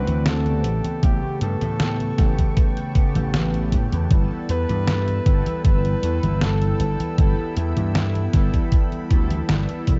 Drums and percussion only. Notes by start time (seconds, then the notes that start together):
0.07 closed hi-hat, high conga
0.26 snare, closed hi-hat, high conga
0.46 closed hi-hat, high conga
0.64 closed hi-hat
0.84 closed hi-hat, high conga
1.03 kick, closed hi-hat, high conga
1.23 high conga
1.41 closed hi-hat
1.61 closed hi-hat, high conga
1.80 snare, closed hi-hat, high conga
2.00 closed hi-hat, high conga
2.18 kick, snare, closed hi-hat
2.38 kick, closed hi-hat, high conga
2.57 kick, closed hi-hat, high conga
2.77 closed hi-hat, high conga
2.95 kick, closed hi-hat
3.15 closed hi-hat, high conga
3.34 snare, closed hi-hat, high conga
3.54 closed hi-hat, high conga
3.72 kick, closed hi-hat
3.92 closed hi-hat, high conga
4.11 kick, closed hi-hat, high conga
4.31 high conga
4.49 closed hi-hat
4.69 closed hi-hat, high conga
4.88 snare, closed hi-hat, high conga
5.08 closed hi-hat, high conga
5.26 kick, closed hi-hat
5.46 closed hi-hat, high conga
5.65 kick, closed hi-hat, high conga
5.85 closed hi-hat, high conga
6.03 closed hi-hat
6.23 closed hi-hat, high conga
6.41 snare, closed hi-hat, high conga
6.62 closed hi-hat, high conga
6.80 closed hi-hat
7.00 closed hi-hat, high conga
7.18 kick, closed hi-hat, high conga
7.38 high conga
7.57 closed hi-hat
7.77 closed hi-hat, high conga
7.95 snare, closed hi-hat, high conga
8.15 closed hi-hat, high conga
8.33 kick, snare, closed hi-hat
8.54 kick, closed hi-hat, high conga
8.72 kick, closed hi-hat, high conga
8.92 closed hi-hat, high conga
9.11 kick, closed hi-hat
9.30 closed hi-hat, high conga
9.49 snare, closed hi-hat, high conga
9.69 closed hi-hat, high conga
9.87 kick, closed hi-hat